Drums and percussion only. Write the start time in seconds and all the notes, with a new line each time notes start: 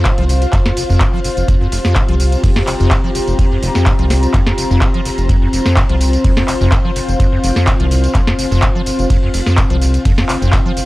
0.05 kick, snare, clap, closed hi-hat, ride, tambourine
0.18 closed hi-hat
0.29 open hi-hat, ride, tambourine
0.42 closed hi-hat, tambourine
0.53 kick, clap, closed hi-hat, ride, tambourine
0.66 snare
0.77 open hi-hat, ride, tambourine
0.90 tambourine
1.00 kick, snare, clap, closed hi-hat, ride, tambourine
1.24 open hi-hat, ride, tambourine
1.37 closed hi-hat, tambourine
1.48 kick, closed hi-hat, ride, tambourine
1.72 open hi-hat, ride, tambourine
1.85 snare, ride, tambourine
1.95 kick, snare, clap, closed hi-hat, ride, tambourine
2.08 closed hi-hat
2.19 open hi-hat, ride, tambourine
2.32 closed hi-hat, tambourine
2.44 kick, closed hi-hat, open hi-hat, tambourine
2.56 snare
2.67 clap, open hi-hat, ride, tambourine
2.80 tambourine
2.91 kick, snare, clap, closed hi-hat, ride, tambourine
3.15 open hi-hat, ride, tambourine
3.28 closed hi-hat, tambourine
3.39 kick, closed hi-hat, ride, tambourine
3.63 open hi-hat, ride, tambourine
3.75 snare, tambourine
3.86 kick, snare, clap, closed hi-hat, ride, tambourine
3.99 closed hi-hat
4.10 snare, open hi-hat, ride, tambourine
4.23 closed hi-hat, tambourine
4.34 kick, clap, closed hi-hat, ride, tambourine
4.47 snare
4.58 open hi-hat, ride, tambourine
4.71 tambourine
4.81 kick, snare, clap, closed hi-hat, ride, tambourine
4.94 closed hi-hat
5.05 open hi-hat, ride, tambourine
5.18 closed hi-hat, tambourine
5.29 kick, closed hi-hat, ride, tambourine
5.53 open hi-hat, ride, tambourine
5.66 snare, ride, tambourine
5.76 kick, snare, clap, closed hi-hat, ride, tambourine
5.89 closed hi-hat
6.01 open hi-hat, ride, tambourine
6.13 closed hi-hat, tambourine
6.24 kick, closed hi-hat, open hi-hat, tambourine
6.37 snare
6.48 clap, open hi-hat, ride, tambourine
6.61 tambourine
6.72 kick, snare, clap, closed hi-hat, ride, tambourine
6.96 open hi-hat, ride, tambourine
7.09 closed hi-hat, tambourine
7.20 kick, closed hi-hat, ride, tambourine
7.44 open hi-hat, ride, tambourine
7.56 snare, tambourine
7.66 kick, snare, clap, closed hi-hat, ride, tambourine
7.80 closed hi-hat
7.91 open hi-hat, ride, tambourine
8.04 closed hi-hat, tambourine
8.14 kick, clap, closed hi-hat, ride, tambourine
8.27 snare
8.39 open hi-hat, ride, tambourine
8.52 tambourine
8.62 kick, snare, clap, closed hi-hat, ride, tambourine
8.86 open hi-hat, ride, tambourine
8.99 closed hi-hat, tambourine
9.10 kick, closed hi-hat, ride, tambourine
9.33 open hi-hat, ride, tambourine
9.46 snare, ride, tambourine
9.57 kick, snare, clap, closed hi-hat, ride, tambourine
9.70 closed hi-hat
9.81 open hi-hat, ride, tambourine
9.94 closed hi-hat, tambourine
10.05 kick, closed hi-hat, open hi-hat, tambourine
10.18 snare
10.29 clap, open hi-hat, ride, tambourine
10.42 tambourine
10.53 kick, snare, clap, closed hi-hat, ride, tambourine
10.77 open hi-hat, ride, tambourine